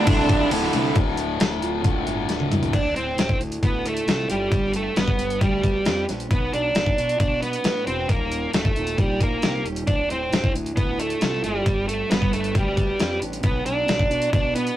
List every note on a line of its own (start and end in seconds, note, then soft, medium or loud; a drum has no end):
0.00 0.48 D4 medium
0.00 0.48 D5 loud
0.07 0.36 C2 medium
0.07 0.28 D2 loud
0.07 0.29 A2 loud
0.07 0.29 D3 loud
0.07 0.95 A3 medium
0.07 0.96 F4 medium
0.07 kick loud
0.07 ride loud
0.29 0.50 D2 medium
0.29 0.50 A2 medium
0.29 0.51 D3 medium
0.29 kick medium
0.29 ride medium
0.51 0.66 D1 medium
0.51 0.72 D2 medium
0.51 0.73 A2 medium
0.51 0.73 D3 medium
0.51 ride loud
0.73 0.88 C2 medium
0.73 0.94 D2 medium
0.73 0.95 A2 medium
0.73 0.95 D3 medium
0.73 ride medium
0.95 1.16 D1 medium
0.95 1.82 D2 medium
0.95 2.07 D2 medium
0.95 1.84 A2 medium
0.95 1.84 D3 medium
0.95 kick loud
0.95 closed hi-hat medium
1.17 1.38 D1 medium
1.17 2.28 D3 medium
1.17 closed hi-hat medium
1.40 1.60 D1 medium
1.40 1.83 A3 medium
1.40 snare loud
1.40 closed hi-hat medium
1.62 1.82 D1 medium
1.62 2.73 F4 medium
1.62 closed hi-hat medium
1.83 2.04 D1 medium
1.83 2.71 D2 medium
1.83 2.72 A2 medium
1.83 2.73 D3 medium
1.83 2.73 A3 medium
1.83 kick loud
1.83 closed hi-hat medium
2.06 2.26 G1 medium
2.06 2.50 A2 medium
2.06 closed hi-hat medium
2.29 2.49 D1 medium
2.29 2.73 D3 medium
2.29 snare soft
2.29 closed hi-hat medium
2.40 high tom medium
2.51 2.71 D1 medium
2.51 2.73 A2 medium
2.51 closed hi-hat medium
2.51 mid tom medium
2.63 closed hi-hat medium
2.63 floor tom medium
2.73 2.91 D1 medium
2.73 3.85 D2 medium
2.73 2.96 D4 medium
2.73 kick medium
2.73 closed hi-hat medium
2.73 crash medium
2.95 3.13 D1 medium
2.95 3.17 A2 medium
2.95 3.37 C4 medium
2.95 closed hi-hat medium
3.18 3.35 D1 medium
3.18 3.61 A2 medium
3.18 snare loud
3.18 closed hi-hat medium
3.29 kick medium
3.40 3.58 D2 medium
3.40 3.84 D3 medium
3.40 closed hi-hat medium
3.52 closed hi-hat medium
3.63 3.98 D2 medium
3.63 4.52 A2 medium
3.63 3.86 B3 medium
3.63 kick medium
3.63 closed hi-hat medium
3.85 4.52 D3 medium
3.85 4.29 A3 medium
3.85 closed hi-hat medium
3.97 closed hi-hat medium
4.07 4.24 C2 medium
4.07 4.52 F4 medium
4.07 snare medium
4.07 closed hi-hat medium
4.30 4.47 G1 medium
4.30 4.71 G3 medium
4.30 4.52 A3 medium
4.30 closed hi-hat medium
4.51 4.87 G1 medium
4.51 5.64 G2 medium
4.51 kick medium
4.51 closed hi-hat soft
4.74 5.86 D3 medium
4.74 4.98 A3 medium
4.74 closed hi-hat medium
4.96 5.14 G1 medium
4.96 5.40 G3 medium
4.96 5.38 B3 medium
4.96 snare medium
4.96 closed hi-hat medium
5.08 kick medium
5.18 5.36 G1 medium
5.18 5.62 B3 medium
5.18 closed hi-hat medium
5.30 closed hi-hat soft
5.41 5.76 D2 medium
5.41 6.04 G3 medium
5.41 6.30 G3 medium
5.41 kick medium
5.41 closed hi-hat soft
5.64 6.30 B3 medium
5.64 kick medium
5.64 closed hi-hat medium
5.85 6.04 F2 medium
5.85 6.30 G4 medium
5.85 snare medium
5.85 closed hi-hat soft
6.08 6.26 A#1 medium
6.08 6.31 D4 medium
6.08 snare soft
6.08 closed hi-hat medium
6.20 closed hi-hat medium
6.30 6.48 B1 medium
6.30 7.42 B2 medium
6.30 6.54 B3 medium
6.30 kick loud
6.30 closed hi-hat soft
6.53 6.71 B1 medium
6.53 7.64 F#3 medium
6.53 7.19 D4 medium
6.53 closed hi-hat medium
6.75 6.93 B1 medium
6.75 7.19 B3 medium
6.75 snare loud
6.75 closed hi-hat medium
6.86 kick medium
6.98 7.15 B2 medium
6.98 7.41 D4 medium
6.98 closed hi-hat medium
7.09 closed hi-hat medium
7.20 7.55 B2 medium
7.20 8.09 B3 medium
7.20 7.40 D4 medium
7.20 kick medium
7.20 closed hi-hat medium
7.42 7.86 B3 medium
7.42 8.09 D4 medium
7.42 closed hi-hat medium
7.53 closed hi-hat medium
7.64 7.82 A2 medium
7.64 8.09 B4 medium
7.64 snare medium
7.64 closed hi-hat medium
7.87 8.04 E1 medium
7.87 8.10 C4 medium
7.87 8.09 F#4 medium
7.87 closed hi-hat medium
8.09 8.44 D#1 medium
8.09 9.20 D#2 medium
8.09 8.50 A#3 medium
8.09 kick medium
8.09 closed hi-hat medium
8.30 8.52 A#2 medium
8.30 closed hi-hat medium
8.53 8.72 D#1 medium
8.53 8.97 A#2 medium
8.53 8.99 A3 medium
8.53 snare medium
8.53 closed hi-hat medium
8.65 kick medium
8.76 8.94 D#1 medium
8.76 9.19 D#3 medium
8.76 closed hi-hat medium
8.87 closed hi-hat medium
8.98 9.33 A#1 medium
8.98 9.87 A#2 medium
8.98 9.20 G3 medium
8.98 kick medium
8.98 closed hi-hat medium
9.20 9.87 D#3 medium
9.20 9.63 A#3 medium
9.20 kick medium
9.20 closed hi-hat medium
9.42 9.60 C2 medium
9.42 9.88 G4 medium
9.42 snare loud
9.42 closed hi-hat soft
9.65 9.83 D#1 medium
9.65 9.88 G3 medium
9.65 closed hi-hat soft
9.76 closed hi-hat medium
9.87 10.05 D1 medium
9.87 10.99 D2 medium
9.87 10.08 D4 medium
9.87 kick medium
9.87 closed hi-hat soft
10.09 10.27 D1 medium
10.09 10.31 A2 medium
10.09 10.52 C4 medium
10.09 closed hi-hat medium
10.32 10.49 D1 medium
10.32 10.75 A2 medium
10.32 snare loud
10.32 closed hi-hat medium
10.44 kick medium
10.54 10.72 D2 medium
10.54 10.98 D3 medium
10.54 closed hi-hat medium
10.66 closed hi-hat medium
10.76 11.12 D2 medium
10.76 11.66 A2 medium
10.76 10.99 B3 medium
10.76 kick medium
10.76 closed hi-hat medium
10.99 11.66 D3 medium
10.99 11.44 A3 medium
10.99 closed hi-hat medium
11.10 closed hi-hat medium
11.21 11.39 C2 medium
11.21 11.66 F4 medium
11.21 snare medium
11.21 closed hi-hat medium
11.44 11.61 G1 medium
11.44 11.85 G3 medium
11.44 11.66 A3 medium
11.44 closed hi-hat medium
11.66 12.01 G1 medium
11.66 12.77 G2 medium
11.66 kick medium
11.66 closed hi-hat medium
11.88 12.99 D3 medium
11.88 12.11 A3 medium
11.88 closed hi-hat medium
12.09 12.28 G1 medium
12.09 12.53 G3 medium
12.09 12.31 B3 medium
12.09 snare loud
12.09 closed hi-hat medium
12.22 kick medium
12.32 12.50 G1 medium
12.32 12.56 A3 medium
12.32 12.75 B3 medium
12.32 closed hi-hat medium
12.44 closed hi-hat medium
12.54 12.90 D2 medium
12.54 13.44 G3 medium
12.54 13.19 G3 medium
12.54 kick loud
12.54 closed hi-hat medium
12.76 13.44 B3 medium
12.76 kick medium
12.76 closed hi-hat medium
12.99 13.17 F2 medium
12.99 13.44 G4 medium
12.99 snare medium
12.99 closed hi-hat soft
13.21 13.39 A1 medium
13.21 13.44 D4 medium
13.21 closed hi-hat medium
13.33 closed hi-hat medium
13.43 13.61 B1 medium
13.43 14.55 B2 medium
13.43 13.65 B3 medium
13.43 kick loud
13.43 closed hi-hat soft
13.66 13.84 B1 medium
13.66 14.77 F#3 medium
13.66 14.29 D4 medium
13.66 closed hi-hat medium
13.87 14.06 B1 medium
13.87 14.32 B3 medium
13.87 snare loud
13.87 closed hi-hat medium
13.99 kick medium
14.10 14.28 B2 medium
14.10 14.54 D4 medium
14.10 closed hi-hat medium
14.22 closed hi-hat medium
14.33 14.68 B2 medium
14.33 14.77 B3 medium
14.33 14.55 D4 medium
14.33 kick loud
14.33 closed hi-hat medium
14.55 14.77 B3 medium
14.55 14.77 D4 medium
14.55 closed hi-hat medium
14.67 closed hi-hat medium